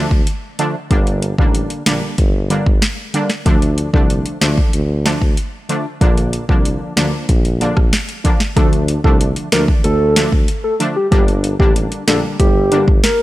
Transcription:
Already playing: D3 F3 A3 D4
0.11 D2, kick
0.27 closed hi-hat
0.59 D3 F3 A3 D4, closed hi-hat
0.91 G1 D3 G3 A#3 D4, kick, closed hi-hat
1.07 closed hi-hat
1.22 closed hi-hat
1.38 A1 D3 G3 A#3 D4, kick
1.55 closed hi-hat
1.70 closed hi-hat
1.86 A#1 D3 G3 A#3 D4, snare, closed hi-hat
2.18 G1, kick, closed hi-hat
2.50 D3 G3 A#3 D4, closed hi-hat
2.66 G1, kick
2.82 snare, closed hi-hat
3.14 D3 G3 A#3 D4, closed hi-hat
3.30 snare
3.45 D2 D3 F3 A3 D4, kick, closed hi-hat
3.62 closed hi-hat
3.78 closed hi-hat
3.93 C2 D3 F3 A3 D4, kick
4.10 closed hi-hat
4.26 closed hi-hat
4.41 D2 D3 F3 A3 D4, snare, closed hi-hat
4.58 kick
4.73 D2, closed hi-hat
5.05 D3 F3 A3 D4, snare, closed hi-hat
5.22 D2, kick
5.37 closed hi-hat
5.69 D3 F3 A3 D4, closed hi-hat
6.01 A#1 D3 F3 A#3 D4, kick, closed hi-hat
6.17 closed hi-hat
6.33 closed hi-hat
6.49 C2 D3 F3 A#3 D4, kick
6.65 closed hi-hat
6.96 D2 D3 F3 A#3 D4, snare, closed hi-hat
7.29 A#1, kick, closed hi-hat
7.45 closed hi-hat
7.60 D3 F3 A#3 D4, closed hi-hat
7.77 A#1, kick, cross-stick
7.93 snare, closed hi-hat
8.09 closed hi-hat
8.24 D3 F3 A#3 D4, kick, closed hi-hat
8.40 snare
8.56 D2 D3 F3 A3 D4 A4, kick, closed hi-hat
8.73 closed hi-hat
8.88 closed hi-hat
9.04 C2 D3 F3 A3 D4 A4, kick
9.21 closed hi-hat
9.36 closed hi-hat
9.52 D2 D3 F3 A3 D4 A#4, snare, closed hi-hat
9.68 kick
9.84 D2 A4, closed hi-hat
10.16 D3 F3 A3 D4, snare, closed hi-hat
10.32 D2, kick
10.48 closed hi-hat
10.64 A4
10.79 D3 F3 A3 D4, closed hi-hat
10.96 G4
11.11 G1 D3 G3 A#3 D4 G4, kick, closed hi-hat
11.28 closed hi-hat
11.44 closed hi-hat
11.59 A1 D3 G3 A#3 D4 G4, kick
11.76 closed hi-hat
11.92 closed hi-hat
12.07 A#1 D3 G3 A#3 D4 A4, snare, closed hi-hat
12.40 G1 G4, kick, closed hi-hat
12.71 D3 G3 A#3 D4, closed hi-hat
12.88 G1, kick
13.03 A#4, snare, closed hi-hat

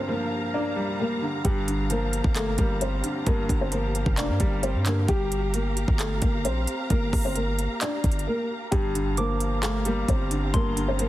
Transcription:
Already playing: G2 D3 F3 G3 A#3 G4 F5 A#5
0.08 F3 A#3 A#4
0.54 A#3 D4 D5
0.76 G3
1.00 A#3 A#4
1.22 D3
1.44 G1 G2 G3 G4, kick, closed hi-hat
1.68 D3, closed hi-hat
1.90 F3 A#3 A#4, closed hi-hat
2.13 closed hi-hat
2.24 G1, kick
2.35 A3 A#3 A4, clap, closed hi-hat
2.58 G1 G3 A#3 A#4, kick, closed hi-hat
2.81 C4 C5, closed hi-hat
3.04 D3, closed hi-hat
3.26 G1 G2 A#3 A#4, kick, closed hi-hat
3.49 G1 D3, kick, closed hi-hat
3.61 C4 C5
3.72 F3 A#3 A#4, closed hi-hat
3.95 closed hi-hat
4.06 F1, kick
4.17 A#3 D4 D5, clap, closed hi-hat
4.29 G2
4.40 G1 G3, kick, closed hi-hat
4.63 C4 C5, closed hi-hat
4.74 G2
4.86 D3 A#3 A#4, clap, closed hi-hat
5.08 G1 G3 G4 F5 A#5, kick, closed hi-hat
5.32 closed hi-hat
5.54 A#3 A#4, closed hi-hat
5.77 closed hi-hat
5.88 G1, kick
5.99 A3 A4, clap, closed hi-hat
6.22 G1 A#3 A#4, kick, closed hi-hat
6.45 A#1 C4 C5, closed hi-hat
6.67 closed hi-hat
6.90 G1 A#3 A#4, kick, closed hi-hat
7.13 G1, kick, cross-stick, open hi-hat
7.25 C4 C5
7.35 A#3 A#4, closed hi-hat
7.59 closed hi-hat
7.81 D4 D5, clap, closed hi-hat
8.04 G1, kick, closed hi-hat
8.12 closed hi-hat
8.19 closed hi-hat
8.27 A#3 A#4
8.71 G1 G2 G3 G4 F5 A#5, kick, closed hi-hat
8.95 D3, closed hi-hat
9.17 F3 A#3 A#4 D6, closed hi-hat
9.40 closed hi-hat
9.63 A3 A#3 A4, clap, closed hi-hat
9.85 G3 A#3 A#4, closed hi-hat
10.08 G1 C4 C5, kick, closed hi-hat
10.31 D3, closed hi-hat
10.54 G1 G2 A#3 A#4 C6, kick, closed hi-hat
10.76 D3, closed hi-hat
10.88 C4 C5
10.99 F3 A#3 A#4, closed hi-hat

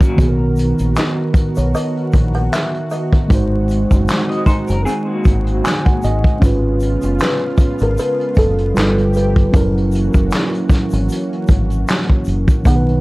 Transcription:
Already playing: E3 F#3 C#4 E4 F#4 A#4
0.01 A#3 F#4, kick, closed hi-hat, shaker
0.15 B1 D#3 B3, kick, closed hi-hat, shaker
0.20 F#4 G#4
0.28 A#4
0.56 closed hi-hat, shaker
0.79 A#1, closed hi-hat, shaker
0.96 D#5, snare, clap, closed hi-hat, shaker
1.34 kick, closed hi-hat, shaker
1.56 B1 C#5, closed hi-hat, shaker
1.75 D#5, closed hi-hat, shaker
1.97 closed hi-hat
2.13 A#1, kick, closed hi-hat, shaker
2.34 F#5, closed hi-hat
2.52 E5, snare, clap, closed hi-hat, shaker
2.74 closed hi-hat
2.91 D#5, closed hi-hat, shaker
3.13 kick, closed hi-hat
3.28 G#1 G#3 C4 D#4, kick, closed hi-hat, shaker
3.32 F#4 C5
3.69 closed hi-hat, shaker
3.91 F#1, kick, closed hi-hat, shaker
4.08 snare, clap, closed hi-hat, shaker
4.29 F#4 D#5, closed hi-hat
4.46 D#4 C5, kick, closed hi-hat, shaker
4.67 F#1 A#4, closed hi-hat, shaker
4.85 C4 G#4, closed hi-hat, shaker
5.07 A#3 F#4
5.24 G#1, kick, closed hi-hat, shaker
5.46 closed hi-hat
5.64 G#5, snare, clap, closed hi-hat, shaker
5.85 F#5, kick, closed hi-hat
6.02 G#1 D#5, closed hi-hat, shaker
6.24 kick, closed hi-hat
6.39 G#1 C#3 B3 C#4 F4, kick, shaker
6.43 B4, closed hi-hat
6.80 closed hi-hat, shaker
7.02 F#1, closed hi-hat, shaker
7.19 B4, snare, clap, closed hi-hat, shaker
7.57 kick, closed hi-hat, shaker
7.79 G#1, closed hi-hat, shaker
7.83 A#4
7.98 B4, closed hi-hat, shaker
8.21 closed hi-hat
8.35 F#1 A4, kick, closed hi-hat, shaker
8.58 closed hi-hat
8.74 G1 F3 G3 A3 F4 G4 A4 B4, clap, closed hi-hat, shaker
8.79 snare
8.98 closed hi-hat
9.14 B4, closed hi-hat, shaker
9.36 kick, closed hi-hat
9.50 E3 F#3 A#3 C#4 F#4, kick, shaker
9.54 F#1 E4 A#4, closed hi-hat
9.77 closed hi-hat
9.92 closed hi-hat, shaker
10.14 F#1, kick, closed hi-hat, shaker
10.31 snare, clap, closed hi-hat, shaker
10.54 closed hi-hat
10.70 kick, snare, closed hi-hat, shaker
10.91 G#1, closed hi-hat, shaker
11.09 closed hi-hat, shaker
11.33 closed hi-hat
11.47 G#1, kick, closed hi-hat, shaker
11.70 closed hi-hat, shaker
11.88 snare, clap, closed hi-hat, shaker
12.10 kick
12.25 F#1, closed hi-hat, shaker
12.48 kick, closed hi-hat, shaker
12.63 B1 D#3 F#3 B3 F#4 F#5, kick, closed hi-hat, shaker
12.67 D#4 G#4
12.76 B4
12.88 closed hi-hat

